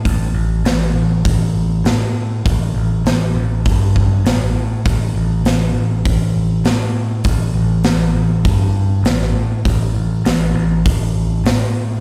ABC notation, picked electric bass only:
X:1
M:4/4
L:1/8
Q:1/4=100
K:Glyd
V:1 name="Picked electric bass" clef=bass
A,,, A,,, A,,, A,,, A,,,2 A,,2 | A,,, A,,, A,,, A,,, G,,2 A,,, A,, | A,,, A,,, A,,, A,,, A,,,2 A,,2 | A,,, A,,, A,,, A,,, G,,2 A,,, A,, |
A,,, A,,, A,,, A,,, A,,,2 A,,2 |]